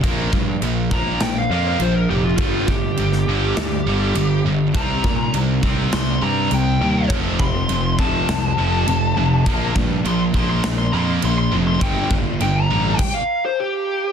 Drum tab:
CC |x---x---x---x---|x---x---x---x---|x---x---x---x---|x---x---x---x---|
SD |--------o-------|-----o--o-------|--------o-------|--------o-------|
BD |o-o---o---------|o-o-------------|o-o---o---------|o-o---o---------|

CC |x---x---x---x---|x---x---x-------|
SD |--------o-------|----------------|
BD |o-o---o---------|o-o-----o-------|